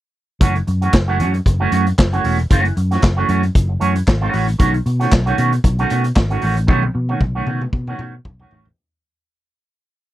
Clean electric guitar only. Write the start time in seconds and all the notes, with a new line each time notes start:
0.40 E3 A3 C#4 F#4
0.55 muted clean electric guitar stroke
0.67 muted clean electric guitar stroke
0.81 E3 A3 C#4 F#4
0.93 muted clean electric guitar stroke
1.08 E3 A3 C#4 F#4
1.18 E3 A3 C#4 F#4
1.34 muted clean electric guitar stroke
1.46 muted clean electric guitar stroke
1.60 E3 A3 C#4 F#4
1.72 E3 A3 C#4 F#4
1.87 muted clean electric guitar stroke
1.98 muted clean electric guitar stroke
2.13 E3 A3 C#4 F#4
2.24 E3 A3 C#4 F#4
2.39 muted clean electric guitar stroke
2.50 E3 A3 C#4 F#4
2.65 muted clean electric guitar stroke
2.76 muted clean electric guitar stroke
2.91 E3 A3 C#4 F#4
3.03 muted clean electric guitar stroke
3.17 E3 A3 C#4 F#4
3.28 E3 A3 C#4 F#4
3.43 muted clean electric guitar stroke
3.69 muted clean electric guitar stroke
3.80 E3 A3 C#4 F#4
3.95 muted clean electric guitar stroke
4.07 muted clean electric guitar stroke
4.21 E3 A3 C#4 F#4
4.33 E3 A3 C#4 F#4
4.47 muted clean electric guitar stroke
4.59 D#3 A3 C#4 F#4
4.73 muted clean electric guitar stroke
4.86 muted clean electric guitar stroke
5.00 D#3 A3 C#4 F#4
5.12 muted clean electric guitar stroke
5.26 D#3 A3 C#4 F#4
5.37 D#3 A3 C#4 F#4
5.53 muted clean electric guitar stroke
5.64 muted clean electric guitar stroke
5.79 D#3 A3 C#4 F#4
5.91 D#3 A3 C#4 F#4
6.05 muted clean electric guitar stroke
6.16 muted clean electric guitar stroke
6.30 D#3 A3 C#4 F#4
6.42 D#3 A3 C#4 F#4
6.56 muted clean electric guitar stroke
6.67 D#3 A3 C#4 F#4
6.82 muted clean electric guitar stroke
6.94 muted clean electric guitar stroke
7.09 D#3 A3 C#4 F#4
7.35 D#3 A3 C#4 F#4
7.47 D#3 A3 C#4 F#4
7.62 muted clean electric guitar stroke
7.73 muted clean electric guitar stroke
7.88 D#3 A3 C#4 F#4
8.00 D#3 A3 C#4 F#4
8.15 muted clean electric guitar stroke
8.26 muted clean electric guitar stroke
8.40 D#3 A3 C#4 F#4
8.52 D#3 A3 C#4 F#4
8.66 muted clean electric guitar stroke